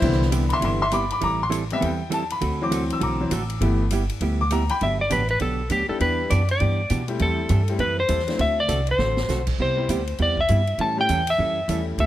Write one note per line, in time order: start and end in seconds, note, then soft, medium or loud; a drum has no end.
0.00 0.50 C2 loud
0.00 0.23 C3 medium
0.00 0.62 D3 medium
0.00 0.62 E3 medium
0.00 0.23 G3 medium
0.00 0.23 B3 medium
0.00 0.20 E4 medium
0.00 0.23 E4 medium
0.00 0.22 C5 loud
0.00 kick medium
0.00 crash medium
0.04 0.62 B3 medium
0.04 0.24 G4 medium
0.12 snare soft
0.22 snare soft
0.31 0.43 C3 medium
0.31 0.43 G3 medium
0.31 0.43 B3 medium
0.31 0.44 E4 medium
0.31 0.44 G4 medium
0.31 hi-hat pedal medium
0.31 ride medium
0.50 0.63 E5 medium
0.50 0.63 C6 loud
0.50 ride medium
0.61 1.10 G1 medium
0.61 0.82 C3 medium
0.61 0.80 D3 soft
0.61 0.80 E3 soft
0.61 0.82 G3 medium
0.61 0.82 B3 medium
0.61 0.80 B3 soft
0.61 0.82 E4 medium
0.61 0.82 G4 medium
0.61 0.80 E5 medium
0.61 0.81 C6 medium
0.61 ride medium
0.82 0.92 E5 medium
0.82 0.93 C6 loud
0.91 1.03 C3 medium
0.91 1.03 G3 medium
0.91 1.04 B3 medium
0.91 1.04 E4 medium
0.91 1.04 G4 medium
0.91 1.10 B5 medium
0.91 1.11 D6 loud
0.91 hi-hat pedal medium
0.91 ride medium
1.10 1.22 B5 medium
1.10 1.23 D6 medium
1.10 ride medium
1.21 1.70 A1 medium
1.21 1.42 E3 medium
1.21 1.42 G3 medium
1.21 1.42 C4 medium
1.21 1.42 E4 medium
1.21 1.42 A4 medium
1.21 1.40 A#5 loud
1.21 1.41 D6 loud
1.21 ride medium
1.43 1.53 C6 loud
1.49 1.62 E3 medium
1.49 1.62 G3 medium
1.49 1.62 C4 medium
1.49 1.63 E4 medium
1.49 1.63 A4 medium
1.49 hi-hat pedal medium
1.49 ride medium
1.70 1.89 C3 medium
1.70 1.89 G3 medium
1.70 1.89 B3 medium
1.70 1.83 E5 loud
1.70 ride medium
1.81 2.30 E2 medium
1.81 2.01 E3 medium
1.81 2.02 G3 medium
1.81 2.01 C4 medium
1.81 2.02 E4 medium
1.81 2.02 A4 medium
1.81 2.12 G5 medium
1.81 ride medium
2.10 2.22 E3 medium
2.10 2.22 G3 medium
2.10 2.23 C4 medium
2.10 2.23 E4 medium
2.10 2.23 A4 medium
2.10 2.31 A5 medium
2.10 hi-hat pedal medium
2.10 ride medium
2.30 2.60 B5 medium
2.30 ride medium
2.41 2.90 D2 medium
2.41 2.61 D3 medium
2.41 2.61 A3 medium
2.41 2.62 C4 medium
2.41 2.62 F#4 medium
2.41 2.62 A4 medium
2.41 ride medium
2.61 3.19 E3 medium
2.61 3.19 F#3 medium
2.61 3.20 C4 medium
2.61 2.91 D6 medium
2.71 2.82 D3 medium
2.71 2.83 A3 medium
2.71 2.83 C4 medium
2.71 2.83 F#4 loud
2.71 2.83 A4 loud
2.71 hi-hat pedal medium
2.71 ride medium
2.90 3.03 E6 medium
2.90 ride medium
3.00 3.27 B1 medium
3.00 3.21 D3 medium
3.00 3.21 A3 medium
3.00 3.21 C4 medium
3.00 3.21 F#4 medium
3.00 3.22 A4 medium
3.00 3.58 A#5 medium
3.00 3.89 D6 medium
3.00 ride medium
3.20 3.30 E3 medium
3.20 3.31 F#3 medium
3.20 3.31 C4 medium
3.31 3.56 A1 medium
3.31 3.42 D3 medium
3.31 3.42 A3 medium
3.31 3.43 C4 medium
3.31 3.43 F#4 medium
3.31 3.43 A4 loud
3.31 hi-hat pedal medium
3.31 ride medium
3.50 ride medium
3.61 4.09 G1 medium
3.61 3.83 E3 medium
3.61 3.81 G3 medium
3.61 3.83 A3 medium
3.61 3.82 B3 medium
3.61 3.84 B3 medium
3.61 3.82 E4 medium
3.61 3.82 G4 medium
3.61 ride medium
3.90 4.02 G3 medium
3.90 4.03 B3 medium
3.90 4.03 E4 loud
3.90 4.03 G4 loud
3.90 hi-hat pedal medium
3.90 ride medium
4.09 ride medium
4.21 4.69 D2 medium
4.21 4.42 G3 medium
4.21 4.41 B3 medium
4.21 4.42 E4 medium
4.21 4.42 G4 medium
4.21 ride medium
4.41 4.51 D6 loud
4.50 4.62 G3 medium
4.50 4.63 B3 medium
4.50 4.62 E4 medium
4.50 4.63 G4 medium
4.50 4.70 A#5 loud
4.50 hi-hat pedal medium
4.50 ride medium
4.69 4.80 G5 loud
4.69 4.81 B5 loud
4.69 ride medium
4.81 5.10 G1 medium
4.81 5.01 D3 medium
4.81 5.02 F#3 medium
4.81 5.02 B3 medium
4.81 5.02 D4 medium
4.81 5.02 G4 medium
4.81 5.01 E5 medium
4.81 ride medium
5.01 5.12 D5 medium
5.10 5.40 A1 loud
5.10 5.21 D3 medium
5.10 5.22 F#3 medium
5.10 5.22 B3 medium
5.10 5.22 D4 medium
5.10 5.22 G4 medium
5.10 5.29 B4 medium
5.10 hi-hat pedal medium
5.10 ride medium
5.28 5.42 B4 medium
5.28 ride soft
5.40 5.69 B1 medium
5.40 5.61 D3 medium
5.40 5.61 F#3 medium
5.40 5.61 B3 medium
5.40 5.61 D4 medium
5.40 5.61 G4 medium
5.40 5.72 A4 medium
5.40 ride medium
5.70 5.87 D2 medium
5.70 5.82 D3 medium
5.70 5.82 F#3 medium
5.70 5.82 B3 medium
5.70 5.82 D4 medium
5.70 5.82 G4 medium
5.70 5.89 G4 medium
5.70 hi-hat pedal soft
5.70 ride medium
5.88 6.28 G3 medium
5.88 6.28 B3 medium
5.88 6.28 D4 medium
5.88 6.28 E4 medium
5.88 6.28 G4 medium
5.88 6.01 A4 medium
5.88 muted upright bass stroke soft
6.00 6.29 E2 medium
6.00 6.21 E3 medium
6.00 6.21 B3 medium
6.00 6.21 D4 medium
6.00 6.21 G4 medium
6.00 6.32 B4 medium
6.00 ride medium
6.30 6.60 F#2 loud
6.30 6.41 E3 medium
6.30 6.41 B3 medium
6.30 6.42 D4 medium
6.30 6.42 G4 medium
6.30 6.49 D5 medium
6.30 hi-hat pedal medium
6.30 ride medium
6.48 7.06 D5 medium
6.48 ride soft
6.60 6.90 G2 medium
6.60 6.80 E3 medium
6.60 6.81 B3 medium
6.60 6.81 D4 medium
6.60 6.81 G4 medium
6.60 ride soft
6.90 7.19 B2 loud
6.90 7.01 E3 medium
6.90 7.01 B3 medium
6.90 7.02 D4 medium
6.90 7.02 G4 medium
6.90 hi-hat pedal medium
6.90 ride medium
7.08 7.47 G3 medium
7.08 7.48 A3 medium
7.08 7.48 C4 medium
7.08 7.48 E4 medium
7.08 7.48 G4 medium
7.08 ride soft
7.19 7.49 E2 medium
7.19 7.40 E3 soft
7.19 7.40 G3 medium
7.19 7.40 C4 medium
7.19 7.40 E4 medium
7.19 7.41 A4 medium
7.19 7.80 A4 medium
7.19 ride medium
7.49 7.78 G2 loud
7.49 7.61 E3 medium
7.49 7.61 G3 medium
7.49 7.61 C4 medium
7.49 7.61 E4 loud
7.49 7.62 A4 medium
7.49 hi-hat pedal medium
7.49 ride medium
7.68 7.79 G3 medium
7.68 7.79 A3 medium
7.68 7.79 C4 medium
7.68 7.79 E4 medium
7.68 7.79 G4 medium
7.68 ride soft
7.79 8.08 F#2 medium
7.79 8.00 E3 medium
7.79 8.00 G3 medium
7.79 8.00 C4 medium
7.79 8.00 E4 medium
7.79 8.00 A4 medium
7.79 7.97 B4 medium
7.79 ride medium
8.00 8.40 C5 loud
8.08 8.38 E2 loud
8.08 8.20 E3 medium
8.08 8.20 G3 medium
8.08 8.21 C4 medium
8.08 8.21 E4 medium
8.08 8.21 A4 medium
8.08 hi-hat pedal medium
8.08 ride medium
8.19 snare soft
8.27 8.38 F#3 medium
8.27 8.38 A3 medium
8.27 8.39 C4 medium
8.27 8.39 D4 medium
8.27 8.39 E4 medium
8.27 snare soft
8.27 ride soft
8.39 8.68 D2 medium
8.39 8.60 D3 medium
8.39 8.59 A3 medium
8.39 8.59 C4 medium
8.39 8.60 F#4 medium
8.39 8.60 A4 medium
8.39 8.58 E5 medium
8.39 ride medium
8.60 8.90 D5 loud
8.68 8.98 C2 medium
8.68 8.80 D3 medium
8.68 8.80 A3 medium
8.68 8.80 C4 medium
8.68 8.80 F#4 medium
8.68 8.80 A4 medium
8.68 hi-hat pedal medium
8.68 ride medium
8.87 ride medium
8.91 9.45 C5 medium
8.98 9.28 A1 medium
8.98 9.19 D3 medium
8.98 9.19 A3 medium
8.98 9.19 C4 medium
8.98 9.19 F#4 medium
8.98 9.20 A4 medium
8.98 snare soft
9.17 snare medium
9.28 9.58 B1 medium
9.28 9.40 D3 medium
9.28 9.40 A3 medium
9.28 9.41 C4 medium
9.28 9.41 F#4 medium
9.28 9.41 A4 medium
9.28 snare medium
9.28 hi-hat pedal medium
9.47 kick medium
9.47 crash medium
9.58 9.88 C2 medium
9.58 9.80 C3 medium
9.58 9.80 G3 medium
9.58 9.80 B3 medium
9.58 9.80 E4 soft
9.58 9.80 G4 medium
9.58 10.22 C5 medium
9.77 9.87 G3 medium
9.77 9.88 B3 medium
9.77 9.88 C4 medium
9.77 9.88 E4 medium
9.77 9.88 G4 medium
9.89 10.18 D2 medium
9.89 10.01 C3 medium
9.89 10.01 G3 medium
9.89 10.01 B3 medium
9.89 10.01 E4 medium
9.89 10.01 G4 medium
9.89 hi-hat pedal medium
9.89 ride medium
10.07 ride soft
10.18 10.48 E2 medium
10.18 10.39 C3 soft
10.18 10.40 G3 medium
10.18 10.39 B3 medium
10.18 10.40 E4 medium
10.18 10.40 G4 medium
10.18 10.40 D5 loud
10.18 ride soft
10.37 10.82 E5 medium
10.37 kick medium
10.48 10.78 G2 loud
10.48 10.61 C3 medium
10.48 10.60 G3 medium
10.48 10.61 B3 medium
10.48 10.61 E4 medium
10.48 10.61 G4 medium
10.48 hi-hat pedal medium
10.48 ride medium
10.67 ride soft
10.78 11.08 A2 medium
10.78 10.99 E3 medium
10.78 11.00 G3 medium
10.78 11.00 C#4 medium
10.78 11.00 E4 medium
10.78 11.00 A4 medium
10.78 10.99 A5 loud
10.78 ride medium
10.97 11.07 G3 medium
10.97 11.08 A3 medium
10.97 11.08 C#4 medium
10.97 11.08 E4 medium
10.97 11.08 G4 loud
10.97 11.30 G5 loud
11.09 11.38 E2 loud
11.09 11.20 E3 medium
11.09 11.20 G3 medium
11.09 11.20 C#4 medium
11.09 11.21 E4 loud
11.09 11.21 A4 medium
11.09 hi-hat pedal medium
11.09 ride medium
11.27 11.85 E5 medium
11.27 ride medium
11.38 11.67 F#2 medium
11.38 11.59 E3 medium
11.38 11.59 G3 medium
11.38 11.59 C#4 medium
11.38 11.59 E4 medium
11.38 11.60 A4 medium
11.68 11.97 E2 medium
11.68 11.80 E3 medium
11.68 11.98 G3 medium
11.68 11.80 G3 medium
11.68 11.99 A3 medium
11.68 11.99 C#4 medium
11.68 11.80 C#4 medium
11.68 11.99 E4 medium
11.68 11.81 E4 medium
11.68 11.99 A4 medium
11.68 11.80 A4 medium
11.68 hi-hat pedal medium
11.68 ride medium
11.98 12.06 D2 medium
11.98 12.06 D3 medium
11.98 12.06 A3 medium
11.98 12.06 C4 medium
11.98 12.06 F#4 medium
11.98 12.06 A4 medium
11.98 12.05 E5 medium
11.98 ride medium